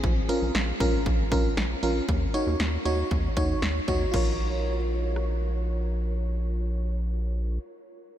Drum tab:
CC |--------|--------|x-------|--------|
HH |xxxxxxxx|xxxxxxxx|--------|--------|
SD |--o---o-|--o---o-|----r---|--------|
BD |o--ooo--|o---oo-o|o-------|--------|